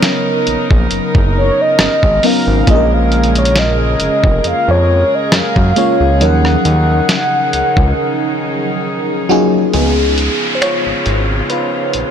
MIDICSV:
0, 0, Header, 1, 7, 480
1, 0, Start_track
1, 0, Key_signature, -6, "minor"
1, 0, Tempo, 882353
1, 1455, Time_signature, 4, 2, 24, 8
1, 6587, End_track
2, 0, Start_track
2, 0, Title_t, "Soft synth lead"
2, 0, Program_c, 0, 80
2, 0, Note_on_c, 0, 73, 92
2, 369, Note_off_c, 0, 73, 0
2, 748, Note_on_c, 0, 73, 85
2, 878, Note_on_c, 0, 75, 92
2, 886, Note_off_c, 0, 73, 0
2, 1230, Note_on_c, 0, 77, 95
2, 1238, Note_off_c, 0, 75, 0
2, 1472, Note_on_c, 0, 75, 101
2, 1480, Note_off_c, 0, 77, 0
2, 1600, Note_on_c, 0, 77, 100
2, 1608, Note_off_c, 0, 75, 0
2, 1840, Note_on_c, 0, 73, 87
2, 1848, Note_off_c, 0, 77, 0
2, 1951, Note_on_c, 0, 75, 94
2, 1959, Note_off_c, 0, 73, 0
2, 2423, Note_off_c, 0, 75, 0
2, 2433, Note_on_c, 0, 77, 104
2, 2560, Note_on_c, 0, 73, 90
2, 2568, Note_off_c, 0, 77, 0
2, 2801, Note_on_c, 0, 75, 94
2, 2809, Note_off_c, 0, 73, 0
2, 2911, Note_on_c, 0, 77, 110
2, 2919, Note_off_c, 0, 75, 0
2, 3383, Note_off_c, 0, 77, 0
2, 3392, Note_on_c, 0, 78, 124
2, 4801, Note_off_c, 0, 78, 0
2, 6587, End_track
3, 0, Start_track
3, 0, Title_t, "FM electric piano"
3, 0, Program_c, 1, 5
3, 0, Control_c, 1, 64, 127
3, 0, Note_on_c, 1, 54, 81
3, 0, Note_on_c, 1, 59, 73
3, 0, Note_on_c, 1, 61, 74
3, 0, Note_on_c, 1, 63, 71
3, 0, Note_on_c, 1, 70, 93
3, 66, Note_off_c, 1, 54, 0
3, 67, Note_off_c, 1, 59, 0
3, 69, Note_off_c, 1, 61, 0
3, 70, Note_off_c, 1, 63, 0
3, 72, Note_off_c, 1, 70, 0
3, 1213, Note_on_c, 1, 54, 76
3, 1217, Note_on_c, 1, 59, 76
3, 1219, Note_on_c, 1, 61, 71
3, 1222, Note_on_c, 1, 63, 71
3, 1226, Note_on_c, 1, 70, 82
3, 1371, Note_off_c, 1, 54, 0
3, 1373, Note_off_c, 1, 59, 0
3, 1374, Note_off_c, 1, 61, 0
3, 1376, Note_off_c, 1, 63, 0
3, 1378, Note_off_c, 1, 70, 0
3, 1452, Note_on_c, 1, 56, 75
3, 1455, Note_on_c, 1, 58, 71
3, 1459, Note_on_c, 1, 61, 72
3, 1462, Control_c, 1, 64, 0
3, 1462, Note_on_c, 1, 65, 74
3, 1466, Note_on_c, 1, 68, 74
3, 1498, Note_off_c, 1, 68, 0
3, 1499, Note_on_c, 1, 70, 86
3, 1560, Control_c, 1, 64, 127
3, 2063, Note_off_c, 1, 56, 0
3, 2064, Note_off_c, 1, 58, 0
3, 2066, Note_off_c, 1, 61, 0
3, 2068, Note_off_c, 1, 65, 0
3, 2086, Note_off_c, 1, 70, 0
3, 3134, Note_on_c, 1, 56, 76
3, 3137, Note_on_c, 1, 58, 73
3, 3139, Note_on_c, 1, 61, 71
3, 3143, Note_on_c, 1, 65, 75
3, 3146, Note_on_c, 1, 73, 87
3, 3291, Note_off_c, 1, 56, 0
3, 3293, Note_off_c, 1, 58, 0
3, 3294, Note_off_c, 1, 61, 0
3, 3296, Note_off_c, 1, 65, 0
3, 3297, Note_off_c, 1, 73, 0
3, 3373, Note_on_c, 1, 54, 77
3, 3376, Note_on_c, 1, 61, 72
3, 3379, Note_on_c, 1, 63, 74
3, 3383, Control_c, 1, 64, 0
3, 3383, Note_on_c, 1, 53, 69
3, 3386, Note_on_c, 1, 70, 86
3, 3463, Control_c, 1, 64, 127
3, 3983, Note_off_c, 1, 54, 0
3, 3984, Note_off_c, 1, 61, 0
3, 3986, Note_off_c, 1, 63, 0
3, 3988, Note_off_c, 1, 53, 0
3, 3990, Note_off_c, 1, 70, 0
3, 5055, Note_on_c, 1, 54, 91
3, 5056, Note_on_c, 1, 66, 96
3, 5058, Note_on_c, 1, 61, 85
3, 5061, Note_on_c, 1, 63, 82
3, 5064, Note_on_c, 1, 65, 80
3, 5066, Note_on_c, 1, 58, 73
3, 5066, Note_on_c, 1, 68, 105
3, 5212, Note_off_c, 1, 54, 0
3, 5214, Note_off_c, 1, 61, 0
3, 5215, Note_off_c, 1, 63, 0
3, 5216, Note_off_c, 1, 65, 0
3, 5218, Note_off_c, 1, 68, 0
3, 5284, Note_off_c, 1, 58, 0
3, 5297, Note_on_c, 1, 68, 102
3, 5298, Note_on_c, 1, 53, 55
3, 5301, Note_on_c, 1, 59, 50
3, 5302, Note_off_c, 1, 66, 0
3, 5302, Control_c, 1, 64, 0
3, 5306, Note_on_c, 1, 63, 65
3, 5307, Note_off_c, 1, 59, 0
3, 5307, Note_on_c, 1, 59, 79
3, 5395, Control_c, 1, 64, 127
3, 5724, Note_off_c, 1, 59, 0
3, 5739, Note_on_c, 1, 72, 76
3, 5754, Note_off_c, 1, 68, 0
3, 5774, Note_off_c, 1, 72, 0
3, 5775, Note_on_c, 1, 73, 103
3, 5784, Note_on_c, 1, 65, 75
3, 6238, Note_off_c, 1, 65, 0
3, 6256, Note_on_c, 1, 71, 91
3, 6267, Note_on_c, 1, 65, 76
3, 6269, Note_off_c, 1, 73, 0
3, 6587, Note_off_c, 1, 53, 0
3, 6587, Note_off_c, 1, 63, 0
3, 6587, Note_off_c, 1, 65, 0
3, 6587, Note_off_c, 1, 71, 0
3, 6587, End_track
4, 0, Start_track
4, 0, Title_t, "String section"
4, 0, Program_c, 2, 48
4, 0, Note_on_c, 2, 49, 78
4, 0, Note_on_c, 2, 59, 73
4, 0, Note_on_c, 2, 63, 87
4, 0, Note_on_c, 2, 70, 70
4, 1434, Note_off_c, 2, 59, 0
4, 1434, Note_off_c, 2, 63, 0
4, 1456, Note_on_c, 2, 56, 74
4, 1456, Note_on_c, 2, 68, 86
4, 3353, Note_off_c, 2, 49, 0
4, 3354, Note_off_c, 2, 70, 0
4, 3356, Note_off_c, 2, 56, 0
4, 3373, Note_on_c, 2, 51, 74
4, 3374, Note_on_c, 2, 49, 77
4, 3374, Note_on_c, 2, 63, 71
4, 5274, Note_off_c, 2, 68, 0
4, 5275, Note_off_c, 2, 49, 0
4, 5275, Note_off_c, 2, 51, 0
4, 5275, Note_off_c, 2, 63, 0
4, 5296, Note_on_c, 2, 49, 75
4, 5296, Note_on_c, 2, 59, 65
4, 5297, Note_on_c, 2, 65, 78
4, 5298, Note_on_c, 2, 56, 66
4, 6587, Note_off_c, 2, 49, 0
4, 6587, Note_off_c, 2, 56, 0
4, 6587, Note_off_c, 2, 59, 0
4, 6587, Note_off_c, 2, 65, 0
4, 6587, End_track
5, 0, Start_track
5, 0, Title_t, "Analog synth bass"
5, 0, Program_c, 3, 38
5, 258, Note_on_c, 3, 34, 51
5, 309, Note_off_c, 3, 34, 0
5, 385, Note_on_c, 3, 34, 91
5, 475, Note_off_c, 3, 34, 0
5, 626, Note_on_c, 3, 30, 99
5, 821, Note_off_c, 3, 30, 0
5, 976, Note_on_c, 3, 32, 50
5, 1028, Note_off_c, 3, 32, 0
5, 1105, Note_on_c, 3, 32, 89
5, 1195, Note_off_c, 3, 32, 0
5, 1344, Note_on_c, 3, 32, 85
5, 1434, Note_off_c, 3, 32, 0
5, 1456, Note_on_c, 3, 34, 112
5, 2154, Note_off_c, 3, 34, 0
5, 2177, Note_on_c, 3, 29, 49
5, 2228, Note_off_c, 3, 29, 0
5, 2305, Note_on_c, 3, 29, 98
5, 2395, Note_off_c, 3, 29, 0
5, 2418, Note_on_c, 3, 41, 50
5, 2469, Note_off_c, 3, 41, 0
5, 2547, Note_on_c, 3, 41, 88
5, 2742, Note_off_c, 3, 41, 0
5, 2898, Note_on_c, 3, 42, 50
5, 2949, Note_off_c, 3, 42, 0
5, 3028, Note_on_c, 3, 42, 91
5, 3117, Note_off_c, 3, 42, 0
5, 3266, Note_on_c, 3, 37, 90
5, 3379, Note_on_c, 3, 39, 112
5, 3387, Note_off_c, 3, 37, 0
5, 3573, Note_off_c, 3, 39, 0
5, 3619, Note_on_c, 3, 39, 102
5, 3813, Note_off_c, 3, 39, 0
5, 4100, Note_on_c, 3, 37, 52
5, 4150, Note_off_c, 3, 37, 0
5, 4227, Note_on_c, 3, 37, 89
5, 4316, Note_off_c, 3, 37, 0
5, 5299, Note_on_c, 3, 37, 98
5, 5599, Note_off_c, 3, 37, 0
5, 5907, Note_on_c, 3, 32, 46
5, 5951, Note_off_c, 3, 32, 0
5, 6018, Note_on_c, 3, 32, 94
5, 6213, Note_off_c, 3, 32, 0
5, 6498, Note_on_c, 3, 34, 45
5, 6549, Note_off_c, 3, 34, 0
5, 6587, End_track
6, 0, Start_track
6, 0, Title_t, "Downlifter"
6, 0, Program_c, 4, 103
6, 5295, Note_on_c, 4, 60, 77
6, 6587, Note_off_c, 4, 60, 0
6, 6587, End_track
7, 0, Start_track
7, 0, Title_t, "Drums"
7, 14, Note_on_c, 9, 38, 116
7, 14, Note_on_c, 9, 42, 81
7, 68, Note_off_c, 9, 38, 0
7, 68, Note_off_c, 9, 42, 0
7, 254, Note_on_c, 9, 42, 60
7, 309, Note_off_c, 9, 42, 0
7, 384, Note_on_c, 9, 36, 94
7, 438, Note_off_c, 9, 36, 0
7, 493, Note_on_c, 9, 42, 58
7, 548, Note_off_c, 9, 42, 0
7, 625, Note_on_c, 9, 36, 100
7, 679, Note_off_c, 9, 36, 0
7, 972, Note_on_c, 9, 37, 108
7, 972, Note_on_c, 9, 38, 123
7, 973, Note_on_c, 9, 42, 73
7, 1027, Note_off_c, 9, 37, 0
7, 1027, Note_off_c, 9, 38, 0
7, 1028, Note_off_c, 9, 42, 0
7, 1104, Note_on_c, 9, 36, 85
7, 1158, Note_off_c, 9, 36, 0
7, 1214, Note_on_c, 9, 46, 73
7, 1268, Note_off_c, 9, 46, 0
7, 1454, Note_on_c, 9, 36, 119
7, 1454, Note_on_c, 9, 42, 74
7, 1508, Note_off_c, 9, 42, 0
7, 1509, Note_off_c, 9, 36, 0
7, 1696, Note_on_c, 9, 42, 39
7, 1750, Note_off_c, 9, 42, 0
7, 1760, Note_on_c, 9, 42, 48
7, 1814, Note_off_c, 9, 42, 0
7, 1825, Note_on_c, 9, 42, 59
7, 1879, Note_off_c, 9, 42, 0
7, 1879, Note_on_c, 9, 42, 71
7, 1933, Note_off_c, 9, 42, 0
7, 1934, Note_on_c, 9, 38, 108
7, 1934, Note_on_c, 9, 42, 77
7, 1989, Note_off_c, 9, 38, 0
7, 1989, Note_off_c, 9, 42, 0
7, 2174, Note_on_c, 9, 42, 59
7, 2229, Note_off_c, 9, 42, 0
7, 2304, Note_on_c, 9, 36, 94
7, 2359, Note_off_c, 9, 36, 0
7, 2417, Note_on_c, 9, 42, 58
7, 2471, Note_off_c, 9, 42, 0
7, 2894, Note_on_c, 9, 37, 105
7, 2894, Note_on_c, 9, 38, 123
7, 2895, Note_on_c, 9, 42, 76
7, 2949, Note_off_c, 9, 37, 0
7, 2949, Note_off_c, 9, 38, 0
7, 2950, Note_off_c, 9, 42, 0
7, 3025, Note_on_c, 9, 36, 90
7, 3080, Note_off_c, 9, 36, 0
7, 3135, Note_on_c, 9, 42, 69
7, 3190, Note_off_c, 9, 42, 0
7, 3378, Note_on_c, 9, 42, 74
7, 3433, Note_off_c, 9, 42, 0
7, 3508, Note_on_c, 9, 37, 62
7, 3563, Note_off_c, 9, 37, 0
7, 3618, Note_on_c, 9, 42, 61
7, 3673, Note_off_c, 9, 42, 0
7, 3857, Note_on_c, 9, 38, 107
7, 3857, Note_on_c, 9, 42, 82
7, 3911, Note_off_c, 9, 38, 0
7, 3911, Note_off_c, 9, 42, 0
7, 4098, Note_on_c, 9, 42, 62
7, 4152, Note_off_c, 9, 42, 0
7, 4226, Note_on_c, 9, 36, 92
7, 4280, Note_off_c, 9, 36, 0
7, 5296, Note_on_c, 9, 42, 66
7, 5350, Note_off_c, 9, 42, 0
7, 5536, Note_on_c, 9, 42, 60
7, 5591, Note_off_c, 9, 42, 0
7, 5777, Note_on_c, 9, 26, 99
7, 5777, Note_on_c, 9, 42, 75
7, 5831, Note_off_c, 9, 26, 0
7, 5831, Note_off_c, 9, 42, 0
7, 6015, Note_on_c, 9, 42, 56
7, 6069, Note_off_c, 9, 42, 0
7, 6254, Note_on_c, 9, 42, 53
7, 6309, Note_off_c, 9, 42, 0
7, 6493, Note_on_c, 9, 42, 66
7, 6547, Note_off_c, 9, 42, 0
7, 6587, End_track
0, 0, End_of_file